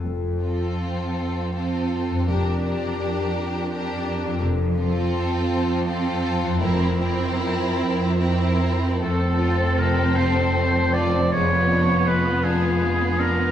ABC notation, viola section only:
X:1
M:6/8
L:1/8
Q:3/8=53
K:F
V:1 name="Viola section"
z C3 C2 | D D3 D2 | z C3 C2 | C C3 C2 |
C6 | _C6 |]